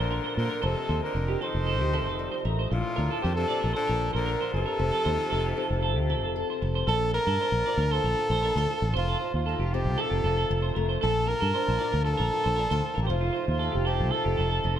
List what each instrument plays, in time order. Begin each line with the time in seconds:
Already playing: steel-string acoustic guitar A#2 F3 F4, woodwind section A#3 D4 A5
0.00 fingered electric bass A#1, tenor saxophone D3, muted trumpet A#4
0.10 steel-string acoustic guitar F4, clean electric guitar A#4
0.24 clean electric guitar C5
0.37 fingered electric bass A#2, tenor saxophone D3, steel-string acoustic guitar F4, muted trumpet A#4
0.50 clean electric guitar A#4
0.62 fingered electric bass F1, tenor saxophone C3, steel-string acoustic guitar F3, woodwind section C4 F4 D#5, muted trumpet A4, clean electric guitar C5
0.75 clean electric guitar A4
0.89 fingered electric bass D#2, steel-string acoustic guitar F4, clean electric guitar C5
1.03 tenor saxophone D3, muted trumpet A#4
1.15 fingered electric bass F1, steel-string acoustic guitar F4, muted clean electric guitar stroke
1.28 clean electric guitar G4
1.41 tenor saxophone D#3, steel-string acoustic guitar F4, clean electric guitar A4, muted trumpet C5
1.55 fingered electric bass F1
1.67 clean electric guitar A4
1.80 fingered electric bass D2, clean electric guitar G4
1.93 steel-string acoustic guitar C3, clean electric guitar A4
2.06 fingered electric bass F1, clean electric guitar A4
2.19 steel-string acoustic guitar G3
2.32 clean electric guitar C5
2.45 fingered electric bass A1, steel-string acoustic guitar A3, clean electric guitar A#4
2.59 clean electric guitar C5
2.71 fingered electric bass A#1, tenor saxophone A2, steel-string acoustic guitar A#2, woodwind section F3 D4 A5, muted trumpet F4, muted clean electric guitar stroke
2.96 fingered electric bass D2, steel-string acoustic guitar D4, clean electric guitar A#4
3.11 clean electric guitar A4
3.22 fingered electric bass F2, tenor saxophone A#2, steel-string acoustic guitar F4, muted trumpet G4, clean electric guitar C5
3.35 tenor saxophone C3, muted trumpet A4
3.48 steel-string acoustic guitar F3 F4, clean electric guitar D5
3.61 fingered electric bass A#1, clean electric guitar A#4
3.73 tenor saxophone D3, muted trumpet A4, clean electric guitar C5
3.87 fingered electric bass A#1, clean electric guitar A#4
4.01 steel-string acoustic guitar F3
4.13 fingered electric bass A#1, tenor saxophone D3, muted trumpet A#4, clean electric guitar C5
4.26 steel-string acoustic guitar F4, clean electric guitar A#4
4.41 clean electric guitar C5
4.54 fingered electric bass F#1, tenor saxophone C3, steel-string acoustic guitar F4, muted trumpet A4
4.66 clean electric guitar A#4
4.79 fingered electric bass F1, steel-string acoustic guitar F3, woodwind section A3 D#4 F4, muted clean electric guitar stroke
4.92 clean electric guitar A4
5.05 fingered electric bass D#2, steel-string acoustic guitar D#4, clean electric guitar C5
5.30 fingered electric bass F1, steel-string acoustic guitar D#4, clean electric guitar A4
5.44 clean electric guitar G4
5.57 steel-string acoustic guitar C4 D#4, clean electric guitar A4
5.70 fingered electric bass F1
5.83 clean electric guitar A4
5.96 fingered electric bass D2, clean electric guitar G4
6.09 steel-string acoustic guitar C3, clean electric guitar A4
6.23 fingered electric bass F1, clean electric guitar A4
6.36 steel-string acoustic guitar A4
6.50 clean electric guitar C5
6.62 fingered electric bass F1, steel-string acoustic guitar A4, muted clean electric guitar stroke
6.75 clean electric guitar C5
6.87 fingered electric bass A#1, steel-string acoustic guitar A#2, woodwind section A#3 D4 A5, clean electric guitar A4, muted trumpet A4
7.14 steel-string acoustic guitar F4, clean electric guitar A#4, muted trumpet A#4
7.27 fingered electric bass G2, clean electric guitar A4
7.40 steel-string acoustic guitar D4, clean electric guitar C5
7.52 fingered electric bass A#1
7.66 steel-string acoustic guitar F3 F4, clean electric guitar D5
7.77 fingered electric bass D2, clean electric guitar A#4
7.91 steel-string acoustic guitar F4, muted trumpet A4, clean electric guitar C5
8.04 fingered electric bass A#1, clean electric guitar A#4
8.19 steel-string acoustic guitar F4
8.30 fingered electric bass A#1, clean electric guitar C5
8.43 steel-string acoustic guitar A#2 D4, clean electric guitar A#4
8.56 fingered electric bass D2, steel-string acoustic guitar F4, clean electric guitar C5
8.71 steel-string acoustic guitar F4
8.82 fingered electric bass A1
8.94 fingered electric bass F1, woodwind section A3 D#4 F4, muted trumpet F4, clean electric guitar C5, muted steel-string acoustic guitar stroke
9.08 clean electric guitar A4
9.20 clean electric guitar C5
9.24 steel-string acoustic guitar D#4
9.34 fingered electric bass D#2, muted trumpet F4
9.46 steel-string acoustic guitar D#4, clean electric guitar A4
9.59 fingered electric bass F1, clean electric guitar G4
9.74 steel-string acoustic guitar C4 D#4, muted trumpet G4
9.85 fingered electric bass C2
9.98 steel-string acoustic guitar D#4, clean electric guitar A4, muted trumpet A4
10.10 fingered electric bass F1, clean electric guitar G4
10.24 fingered electric bass F1, steel-string acoustic guitar D#4, clean electric guitar A4
10.37 clean electric guitar A4
10.50 fingered electric bass F1, muted steel-string acoustic guitar stroke
10.62 clean electric guitar C5
10.75 fingered electric bass F1, steel-string acoustic guitar A3, clean electric guitar A#4
10.89 clean electric guitar C5
11.01 fingered electric bass A#1, steel-string acoustic guitar A#2, woodwind section A#3 D4 A5, clean electric guitar A4, muted trumpet A4
11.27 steel-string acoustic guitar F4, clean electric guitar A#4, muted trumpet A#4
11.40 fingered electric bass G2, clean electric guitar A4
11.54 steel-string acoustic guitar D4, clean electric guitar C5
11.68 fingered electric bass A#1
11.79 steel-string acoustic guitar F3 F4, clean electric guitar D5
11.92 fingered electric bass D2, clean electric guitar A#4
12.05 steel-string acoustic guitar F4, muted trumpet A4, muted clean electric guitar stroke
12.17 fingered electric bass A#1, clean electric guitar A#4
12.34 steel-string acoustic guitar F4
12.44 fingered electric bass A#1, clean electric guitar C5
12.56 steel-string acoustic guitar A#2 D4, clean electric guitar A#4
12.70 fingered electric bass D2, steel-string acoustic guitar F4, clean electric guitar C5
12.85 steel-string acoustic guitar F4
12.95 fingered electric bass A1, clean electric guitar A#4
13.02 muted trumpet G4
13.07 fingered electric bass F1, steel-string acoustic guitar F3, woodwind section A3 D#4 F4, muted trumpet F4, clean electric guitar C5
13.21 clean electric guitar F4
13.33 steel-string acoustic guitar D#4, clean electric guitar C5
13.48 fingered electric bass D#2, muted trumpet F4
13.59 steel-string acoustic guitar D#4, clean electric guitar A4
13.72 fingered electric bass F1, clean electric guitar G4
13.85 steel-string acoustic guitar C4 D#4, muted trumpet G4, clean electric guitar A4
14.00 fingered electric bass C2
14.11 steel-string acoustic guitar D#4, clean electric guitar A4, muted trumpet A4
14.25 fingered electric bass F1, clean electric guitar G4
14.37 fingered electric bass F1, steel-string acoustic guitar D#4, clean electric guitar A4
14.50 clean electric guitar A4
14.64 fingered electric bass F1, steel-string acoustic guitar C3 D#4
14.76 clean electric guitar C5